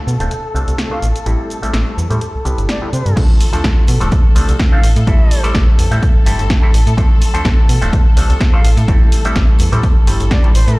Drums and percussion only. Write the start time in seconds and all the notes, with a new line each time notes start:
0.07 tambourine, shaker
0.20 closed hi-hat, shaker
0.31 closed hi-hat, shaker
0.56 shaker
0.68 closed hi-hat, shaker
0.78 snare, closed hi-hat, shaker
1.02 closed hi-hat, tambourine, shaker
1.16 closed hi-hat, tambourine, shaker
1.26 closed hi-hat, tambourine, shaker
1.50 closed hi-hat, tambourine, shaker
1.63 closed hi-hat, tambourine, shaker
1.73 snare, closed hi-hat, shaker
1.97 tambourine, shaker
2.11 closed hi-hat, tambourine, shaker
2.21 closed hi-hat, tambourine, shaker
2.45 closed hi-hat, tambourine, shaker
2.58 closed hi-hat, tambourine, shaker
2.69 snare, closed hi-hat, shaker
2.93 closed hi-hat, tambourine, shaker
3.05 closed hi-hat, tambourine, shaker
3.17 kick, closed hi-hat, crash, tambourine, shaker
3.40 open hi-hat, tambourine, shaker
3.53 closed hi-hat, tambourine, shaker
3.64 kick, snare, closed hi-hat, tambourine, shaker
3.87 open hi-hat, tambourine, shaker
4.01 closed hi-hat, tambourine, shaker
4.11 kick, closed hi-hat, tambourine, shaker
4.35 open hi-hat, tambourine, shaker
4.48 closed hi-hat, tambourine, shaker
4.59 kick, snare, closed hi-hat, tambourine, shaker
4.83 open hi-hat, tambourine, shaker
4.96 closed hi-hat, tambourine, shaker
5.07 kick, closed hi-hat, tambourine, shaker
5.31 open hi-hat, tambourine, shaker
5.44 closed hi-hat, tambourine, shaker
5.55 kick, snare, closed hi-hat, tambourine, shaker
5.79 open hi-hat, tambourine, shaker
5.92 closed hi-hat, tambourine, shaker
6.03 kick, closed hi-hat, tambourine, shaker
6.26 open hi-hat, tambourine, shaker
6.39 closed hi-hat, tambourine, shaker
6.50 kick, snare, closed hi-hat, shaker
6.74 open hi-hat, tambourine, shaker
6.87 closed hi-hat, tambourine, shaker
6.98 kick, closed hi-hat, tambourine, shaker
7.21 open hi-hat, tambourine, shaker
7.35 closed hi-hat, tambourine, shaker
7.45 kick, snare, closed hi-hat, tambourine, shaker
7.69 open hi-hat, tambourine, shaker
7.82 closed hi-hat, tambourine, shaker
7.93 kick, closed hi-hat, tambourine, shaker
8.17 open hi-hat, tambourine, shaker
8.30 closed hi-hat, tambourine, shaker
8.41 kick, snare, closed hi-hat, shaker
8.64 open hi-hat, tambourine, shaker
8.77 closed hi-hat, tambourine, shaker
8.88 kick, closed hi-hat, shaker
9.12 open hi-hat, tambourine, shaker
9.24 closed hi-hat, tambourine, shaker
9.36 kick, snare, closed hi-hat, tambourine, shaker
9.59 open hi-hat, tambourine, shaker
9.73 closed hi-hat, tambourine, shaker
9.83 kick, closed hi-hat, tambourine, shaker
10.07 open hi-hat, tambourine, shaker
10.20 closed hi-hat, tambourine, shaker
10.31 kick, snare, closed hi-hat, shaker
10.44 closed hi-hat
10.55 open hi-hat, tambourine, shaker
10.68 closed hi-hat, tambourine, shaker